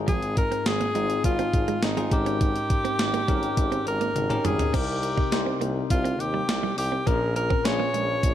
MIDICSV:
0, 0, Header, 1, 7, 480
1, 0, Start_track
1, 0, Tempo, 582524
1, 66, Time_signature, 4, 2, 24, 8
1, 6873, End_track
2, 0, Start_track
2, 0, Title_t, "Alto saxophone"
2, 0, Program_c, 0, 65
2, 70, Note_on_c, 0, 68, 96
2, 291, Note_off_c, 0, 68, 0
2, 312, Note_on_c, 0, 70, 101
2, 552, Note_on_c, 0, 68, 104
2, 565, Note_off_c, 0, 70, 0
2, 1027, Note_off_c, 0, 68, 0
2, 1032, Note_on_c, 0, 65, 99
2, 1476, Note_off_c, 0, 65, 0
2, 1512, Note_on_c, 0, 63, 86
2, 1732, Note_off_c, 0, 63, 0
2, 1752, Note_on_c, 0, 67, 99
2, 3156, Note_off_c, 0, 67, 0
2, 3195, Note_on_c, 0, 70, 99
2, 3674, Note_on_c, 0, 68, 93
2, 3687, Note_off_c, 0, 70, 0
2, 3911, Note_on_c, 0, 67, 83
2, 3924, Note_off_c, 0, 68, 0
2, 4628, Note_off_c, 0, 67, 0
2, 4867, Note_on_c, 0, 65, 87
2, 5113, Note_on_c, 0, 67, 83
2, 5125, Note_off_c, 0, 65, 0
2, 5584, Note_off_c, 0, 67, 0
2, 5589, Note_on_c, 0, 67, 92
2, 5827, Note_on_c, 0, 70, 96
2, 5840, Note_off_c, 0, 67, 0
2, 6061, Note_off_c, 0, 70, 0
2, 6066, Note_on_c, 0, 70, 98
2, 6305, Note_on_c, 0, 73, 102
2, 6317, Note_off_c, 0, 70, 0
2, 6873, Note_off_c, 0, 73, 0
2, 6873, End_track
3, 0, Start_track
3, 0, Title_t, "Tine electric piano"
3, 0, Program_c, 1, 4
3, 0, Control_c, 1, 64, 127
3, 0, Note_on_c, 1, 44, 59
3, 0, Note_on_c, 1, 60, 71
3, 0, Note_on_c, 1, 63, 62
3, 0, Note_on_c, 1, 65, 63
3, 0, Note_on_c, 1, 68, 73
3, 512, Note_off_c, 1, 44, 0
3, 590, Note_off_c, 1, 60, 0
3, 592, Note_off_c, 1, 63, 0
3, 594, Note_off_c, 1, 65, 0
3, 595, Note_off_c, 1, 68, 0
3, 779, Note_on_c, 1, 60, 72
3, 783, Note_on_c, 1, 63, 64
3, 785, Note_on_c, 1, 65, 68
3, 790, Note_on_c, 1, 68, 78
3, 1398, Note_off_c, 1, 60, 0
3, 1400, Note_off_c, 1, 63, 0
3, 1401, Note_off_c, 1, 65, 0
3, 1403, Note_off_c, 1, 68, 0
3, 1621, Note_on_c, 1, 60, 72
3, 1624, Note_on_c, 1, 63, 67
3, 1627, Note_on_c, 1, 65, 66
3, 1630, Note_on_c, 1, 68, 78
3, 1733, Note_off_c, 1, 63, 0
3, 1740, Note_on_c, 1, 61, 71
3, 1743, Note_off_c, 1, 60, 0
3, 1743, Note_on_c, 1, 63, 67
3, 1745, Note_on_c, 1, 44, 60
3, 1746, Note_off_c, 1, 65, 0
3, 1747, Note_on_c, 1, 67, 64
3, 1748, Note_off_c, 1, 68, 0
3, 1750, Note_on_c, 1, 70, 79
3, 1757, Control_c, 1, 64, 0
3, 1902, Control_c, 1, 64, 127
3, 2432, Note_off_c, 1, 44, 0
3, 2511, Note_off_c, 1, 61, 0
3, 2512, Note_off_c, 1, 63, 0
3, 2514, Note_off_c, 1, 67, 0
3, 2516, Note_off_c, 1, 70, 0
3, 2702, Note_on_c, 1, 61, 82
3, 2704, Note_on_c, 1, 63, 71
3, 2709, Note_on_c, 1, 67, 76
3, 2712, Note_on_c, 1, 70, 87
3, 3320, Note_off_c, 1, 61, 0
3, 3321, Note_off_c, 1, 63, 0
3, 3323, Note_off_c, 1, 67, 0
3, 3325, Note_off_c, 1, 70, 0
3, 3539, Note_on_c, 1, 61, 85
3, 3541, Note_on_c, 1, 63, 75
3, 3545, Note_on_c, 1, 67, 76
3, 3549, Note_on_c, 1, 70, 96
3, 3806, Note_off_c, 1, 61, 0
3, 3807, Note_off_c, 1, 63, 0
3, 3809, Note_off_c, 1, 67, 0
3, 3811, Note_off_c, 1, 70, 0
3, 3898, Note_on_c, 1, 60, 71
3, 3902, Note_on_c, 1, 63, 63
3, 3905, Note_on_c, 1, 48, 58
3, 3905, Note_on_c, 1, 67, 62
3, 3909, Note_on_c, 1, 70, 75
3, 3917, Control_c, 1, 64, 0
3, 4039, Control_c, 1, 64, 127
3, 4254, Note_off_c, 1, 60, 0
3, 4256, Note_off_c, 1, 63, 0
3, 4257, Note_off_c, 1, 67, 0
3, 4259, Note_off_c, 1, 70, 0
3, 4382, Note_on_c, 1, 60, 73
3, 4384, Note_on_c, 1, 63, 66
3, 4386, Note_on_c, 1, 67, 68
3, 4392, Note_on_c, 1, 72, 81
3, 4592, Note_off_c, 1, 48, 0
3, 5087, Note_off_c, 1, 60, 0
3, 5088, Note_off_c, 1, 63, 0
3, 5090, Note_off_c, 1, 67, 0
3, 5092, Note_off_c, 1, 72, 0
3, 5819, Note_on_c, 1, 61, 67
3, 5821, Note_on_c, 1, 65, 65
3, 5824, Note_on_c, 1, 46, 62
3, 5825, Note_on_c, 1, 68, 66
3, 5828, Note_on_c, 1, 70, 76
3, 5837, Control_c, 1, 64, 0
3, 5957, Control_c, 1, 64, 127
3, 6174, Note_off_c, 1, 61, 0
3, 6175, Note_off_c, 1, 65, 0
3, 6177, Note_off_c, 1, 68, 0
3, 6179, Note_off_c, 1, 70, 0
3, 6300, Note_on_c, 1, 61, 73
3, 6304, Note_on_c, 1, 65, 68
3, 6308, Note_on_c, 1, 68, 66
3, 6311, Note_on_c, 1, 71, 64
3, 6362, Note_off_c, 1, 71, 0
3, 6364, Note_on_c, 1, 73, 82
3, 6512, Note_off_c, 1, 46, 0
3, 6873, Note_off_c, 1, 61, 0
3, 6873, Note_off_c, 1, 65, 0
3, 6873, Note_off_c, 1, 68, 0
3, 6873, Note_off_c, 1, 73, 0
3, 6873, End_track
4, 0, Start_track
4, 0, Title_t, "Clean electric guitar"
4, 0, Program_c, 2, 27
4, 64, Note_on_c, 2, 53, 80
4, 141, Note_off_c, 2, 53, 0
4, 424, Note_on_c, 2, 60, 60
4, 501, Note_off_c, 2, 60, 0
4, 664, Note_on_c, 2, 58, 68
4, 741, Note_off_c, 2, 58, 0
4, 786, Note_on_c, 2, 56, 78
4, 863, Note_off_c, 2, 56, 0
4, 1145, Note_on_c, 2, 60, 68
4, 1222, Note_off_c, 2, 60, 0
4, 1385, Note_on_c, 2, 56, 63
4, 1462, Note_off_c, 2, 56, 0
4, 1625, Note_on_c, 2, 56, 74
4, 1702, Note_off_c, 2, 56, 0
4, 1865, Note_on_c, 2, 61, 69
4, 1942, Note_off_c, 2, 61, 0
4, 1986, Note_on_c, 2, 63, 73
4, 2062, Note_off_c, 2, 63, 0
4, 2345, Note_on_c, 2, 60, 77
4, 2422, Note_off_c, 2, 60, 0
4, 2585, Note_on_c, 2, 58, 75
4, 2662, Note_off_c, 2, 58, 0
4, 2705, Note_on_c, 2, 55, 71
4, 2781, Note_off_c, 2, 55, 0
4, 3064, Note_on_c, 2, 60, 72
4, 3141, Note_off_c, 2, 60, 0
4, 3304, Note_on_c, 2, 58, 61
4, 3381, Note_off_c, 2, 58, 0
4, 3664, Note_on_c, 2, 55, 64
4, 3741, Note_off_c, 2, 55, 0
4, 3904, Note_on_c, 2, 60, 76
4, 3981, Note_off_c, 2, 60, 0
4, 4263, Note_on_c, 2, 63, 65
4, 4340, Note_off_c, 2, 63, 0
4, 4502, Note_on_c, 2, 60, 67
4, 4580, Note_off_c, 2, 60, 0
4, 4623, Note_on_c, 2, 58, 81
4, 4700, Note_off_c, 2, 58, 0
4, 4981, Note_on_c, 2, 60, 67
4, 5059, Note_off_c, 2, 60, 0
4, 5223, Note_on_c, 2, 55, 65
4, 5301, Note_off_c, 2, 55, 0
4, 5466, Note_on_c, 2, 55, 79
4, 5542, Note_off_c, 2, 55, 0
4, 5702, Note_on_c, 2, 60, 73
4, 5780, Note_off_c, 2, 60, 0
4, 5823, Note_on_c, 2, 58, 74
4, 5900, Note_off_c, 2, 58, 0
4, 6182, Note_on_c, 2, 60, 77
4, 6260, Note_off_c, 2, 60, 0
4, 6424, Note_on_c, 2, 58, 78
4, 6501, Note_off_c, 2, 58, 0
4, 6542, Note_on_c, 2, 56, 73
4, 6620, Note_off_c, 2, 56, 0
4, 6873, End_track
5, 0, Start_track
5, 0, Title_t, "Tuba"
5, 0, Program_c, 3, 58
5, 0, Note_on_c, 3, 32, 86
5, 341, Note_off_c, 3, 32, 0
5, 543, Note_on_c, 3, 32, 98
5, 717, Note_off_c, 3, 32, 0
5, 783, Note_on_c, 3, 32, 88
5, 957, Note_off_c, 3, 32, 0
5, 1022, Note_on_c, 3, 32, 103
5, 1196, Note_off_c, 3, 32, 0
5, 1263, Note_on_c, 3, 32, 90
5, 1437, Note_off_c, 3, 32, 0
5, 1503, Note_on_c, 3, 32, 103
5, 1677, Note_off_c, 3, 32, 0
5, 1743, Note_on_c, 3, 32, 90
5, 2102, Note_off_c, 3, 32, 0
5, 2462, Note_on_c, 3, 32, 85
5, 2636, Note_off_c, 3, 32, 0
5, 2704, Note_on_c, 3, 32, 85
5, 2878, Note_off_c, 3, 32, 0
5, 2944, Note_on_c, 3, 32, 90
5, 3118, Note_off_c, 3, 32, 0
5, 3183, Note_on_c, 3, 32, 92
5, 3356, Note_off_c, 3, 32, 0
5, 3422, Note_on_c, 3, 32, 88
5, 3596, Note_off_c, 3, 32, 0
5, 3662, Note_on_c, 3, 32, 84
5, 3836, Note_off_c, 3, 32, 0
5, 3904, Note_on_c, 3, 36, 108
5, 4250, Note_off_c, 3, 36, 0
5, 4381, Note_on_c, 3, 36, 92
5, 4555, Note_off_c, 3, 36, 0
5, 4619, Note_on_c, 3, 36, 91
5, 4795, Note_off_c, 3, 36, 0
5, 4863, Note_on_c, 3, 36, 98
5, 5105, Note_on_c, 3, 39, 88
5, 5117, Note_off_c, 3, 36, 0
5, 5278, Note_off_c, 3, 39, 0
5, 5344, Note_on_c, 3, 36, 94
5, 5517, Note_off_c, 3, 36, 0
5, 5583, Note_on_c, 3, 36, 96
5, 5757, Note_off_c, 3, 36, 0
5, 5825, Note_on_c, 3, 34, 111
5, 6171, Note_off_c, 3, 34, 0
5, 6303, Note_on_c, 3, 34, 99
5, 6477, Note_off_c, 3, 34, 0
5, 6545, Note_on_c, 3, 34, 94
5, 6718, Note_off_c, 3, 34, 0
5, 6784, Note_on_c, 3, 34, 99
5, 6873, Note_off_c, 3, 34, 0
5, 6873, End_track
6, 0, Start_track
6, 0, Title_t, "Muted clean electric guitar strokes"
6, 302, Note_on_c, 9, 29, 43
6, 385, Note_off_c, 9, 29, 0
6, 543, Note_on_c, 9, 29, 41
6, 625, Note_off_c, 9, 29, 0
6, 1266, Note_on_c, 9, 29, 45
6, 1348, Note_off_c, 9, 29, 0
6, 1744, Note_on_c, 9, 29, 41
6, 1826, Note_off_c, 9, 29, 0
6, 2226, Note_on_c, 9, 29, 44
6, 2308, Note_off_c, 9, 29, 0
6, 2464, Note_on_c, 9, 29, 43
6, 2547, Note_off_c, 9, 29, 0
6, 3187, Note_on_c, 9, 29, 42
6, 3269, Note_off_c, 9, 29, 0
6, 4144, Note_on_c, 9, 29, 43
6, 4226, Note_off_c, 9, 29, 0
6, 4384, Note_on_c, 9, 29, 41
6, 4467, Note_off_c, 9, 29, 0
6, 5101, Note_on_c, 9, 29, 42
6, 5184, Note_off_c, 9, 29, 0
6, 5582, Note_on_c, 9, 29, 43
6, 5665, Note_off_c, 9, 29, 0
6, 6062, Note_on_c, 9, 29, 43
6, 6145, Note_off_c, 9, 29, 0
6, 6873, End_track
7, 0, Start_track
7, 0, Title_t, "Drums"
7, 65, Note_on_c, 9, 36, 107
7, 65, Note_on_c, 9, 42, 78
7, 147, Note_off_c, 9, 42, 0
7, 148, Note_off_c, 9, 36, 0
7, 186, Note_on_c, 9, 42, 49
7, 268, Note_off_c, 9, 42, 0
7, 305, Note_on_c, 9, 36, 82
7, 305, Note_on_c, 9, 42, 72
7, 387, Note_off_c, 9, 42, 0
7, 388, Note_off_c, 9, 36, 0
7, 426, Note_on_c, 9, 42, 47
7, 509, Note_off_c, 9, 42, 0
7, 543, Note_on_c, 9, 42, 74
7, 545, Note_on_c, 9, 38, 100
7, 625, Note_off_c, 9, 42, 0
7, 628, Note_off_c, 9, 38, 0
7, 664, Note_on_c, 9, 42, 46
7, 747, Note_off_c, 9, 42, 0
7, 784, Note_on_c, 9, 42, 59
7, 866, Note_off_c, 9, 42, 0
7, 903, Note_on_c, 9, 42, 48
7, 986, Note_off_c, 9, 42, 0
7, 1024, Note_on_c, 9, 36, 89
7, 1024, Note_on_c, 9, 42, 87
7, 1106, Note_off_c, 9, 36, 0
7, 1106, Note_off_c, 9, 42, 0
7, 1144, Note_on_c, 9, 42, 44
7, 1227, Note_off_c, 9, 42, 0
7, 1265, Note_on_c, 9, 36, 82
7, 1267, Note_on_c, 9, 42, 59
7, 1347, Note_off_c, 9, 36, 0
7, 1349, Note_off_c, 9, 42, 0
7, 1384, Note_on_c, 9, 42, 51
7, 1466, Note_off_c, 9, 42, 0
7, 1504, Note_on_c, 9, 38, 98
7, 1506, Note_on_c, 9, 42, 67
7, 1587, Note_off_c, 9, 38, 0
7, 1588, Note_off_c, 9, 42, 0
7, 1626, Note_on_c, 9, 42, 46
7, 1708, Note_off_c, 9, 42, 0
7, 1742, Note_on_c, 9, 36, 86
7, 1744, Note_on_c, 9, 42, 74
7, 1825, Note_off_c, 9, 36, 0
7, 1826, Note_off_c, 9, 42, 0
7, 1864, Note_on_c, 9, 42, 48
7, 1947, Note_off_c, 9, 42, 0
7, 1985, Note_on_c, 9, 36, 101
7, 1985, Note_on_c, 9, 42, 77
7, 2067, Note_off_c, 9, 36, 0
7, 2067, Note_off_c, 9, 42, 0
7, 2106, Note_on_c, 9, 42, 48
7, 2188, Note_off_c, 9, 42, 0
7, 2225, Note_on_c, 9, 36, 84
7, 2225, Note_on_c, 9, 42, 67
7, 2307, Note_off_c, 9, 42, 0
7, 2308, Note_off_c, 9, 36, 0
7, 2348, Note_on_c, 9, 42, 48
7, 2430, Note_off_c, 9, 42, 0
7, 2464, Note_on_c, 9, 42, 73
7, 2466, Note_on_c, 9, 38, 88
7, 2546, Note_off_c, 9, 42, 0
7, 2548, Note_off_c, 9, 38, 0
7, 2586, Note_on_c, 9, 42, 46
7, 2668, Note_off_c, 9, 42, 0
7, 2705, Note_on_c, 9, 42, 65
7, 2706, Note_on_c, 9, 36, 96
7, 2788, Note_off_c, 9, 36, 0
7, 2788, Note_off_c, 9, 42, 0
7, 2824, Note_on_c, 9, 42, 49
7, 2906, Note_off_c, 9, 42, 0
7, 2944, Note_on_c, 9, 36, 87
7, 2944, Note_on_c, 9, 42, 86
7, 3026, Note_off_c, 9, 42, 0
7, 3027, Note_off_c, 9, 36, 0
7, 3066, Note_on_c, 9, 42, 47
7, 3149, Note_off_c, 9, 42, 0
7, 3187, Note_on_c, 9, 42, 61
7, 3270, Note_off_c, 9, 42, 0
7, 3303, Note_on_c, 9, 42, 50
7, 3386, Note_off_c, 9, 42, 0
7, 3425, Note_on_c, 9, 48, 50
7, 3427, Note_on_c, 9, 42, 71
7, 3507, Note_off_c, 9, 48, 0
7, 3509, Note_off_c, 9, 42, 0
7, 3545, Note_on_c, 9, 47, 58
7, 3546, Note_on_c, 9, 42, 47
7, 3627, Note_off_c, 9, 47, 0
7, 3628, Note_off_c, 9, 42, 0
7, 3664, Note_on_c, 9, 42, 77
7, 3665, Note_on_c, 9, 45, 78
7, 3746, Note_off_c, 9, 42, 0
7, 3747, Note_off_c, 9, 45, 0
7, 3784, Note_on_c, 9, 42, 46
7, 3786, Note_on_c, 9, 43, 80
7, 3867, Note_off_c, 9, 42, 0
7, 3868, Note_off_c, 9, 43, 0
7, 3905, Note_on_c, 9, 36, 105
7, 3905, Note_on_c, 9, 49, 86
7, 3906, Note_on_c, 9, 42, 79
7, 3988, Note_off_c, 9, 36, 0
7, 3988, Note_off_c, 9, 42, 0
7, 3988, Note_off_c, 9, 49, 0
7, 4145, Note_on_c, 9, 42, 69
7, 4228, Note_off_c, 9, 42, 0
7, 4265, Note_on_c, 9, 36, 81
7, 4347, Note_off_c, 9, 36, 0
7, 4384, Note_on_c, 9, 42, 79
7, 4387, Note_on_c, 9, 38, 98
7, 4467, Note_off_c, 9, 42, 0
7, 4469, Note_off_c, 9, 38, 0
7, 4626, Note_on_c, 9, 42, 60
7, 4709, Note_off_c, 9, 42, 0
7, 4865, Note_on_c, 9, 36, 91
7, 4867, Note_on_c, 9, 42, 92
7, 4947, Note_off_c, 9, 36, 0
7, 4949, Note_off_c, 9, 42, 0
7, 4988, Note_on_c, 9, 42, 47
7, 5071, Note_off_c, 9, 42, 0
7, 5110, Note_on_c, 9, 42, 61
7, 5193, Note_off_c, 9, 42, 0
7, 5347, Note_on_c, 9, 38, 100
7, 5348, Note_on_c, 9, 42, 73
7, 5429, Note_off_c, 9, 38, 0
7, 5430, Note_off_c, 9, 42, 0
7, 5586, Note_on_c, 9, 46, 75
7, 5668, Note_off_c, 9, 46, 0
7, 5826, Note_on_c, 9, 36, 104
7, 5827, Note_on_c, 9, 42, 75
7, 5908, Note_off_c, 9, 36, 0
7, 5909, Note_off_c, 9, 42, 0
7, 6066, Note_on_c, 9, 42, 73
7, 6148, Note_off_c, 9, 42, 0
7, 6185, Note_on_c, 9, 36, 83
7, 6267, Note_off_c, 9, 36, 0
7, 6305, Note_on_c, 9, 42, 77
7, 6307, Note_on_c, 9, 38, 102
7, 6387, Note_off_c, 9, 42, 0
7, 6389, Note_off_c, 9, 38, 0
7, 6545, Note_on_c, 9, 42, 62
7, 6627, Note_off_c, 9, 42, 0
7, 6784, Note_on_c, 9, 36, 98
7, 6786, Note_on_c, 9, 42, 94
7, 6866, Note_off_c, 9, 36, 0
7, 6868, Note_off_c, 9, 42, 0
7, 6873, End_track
0, 0, End_of_file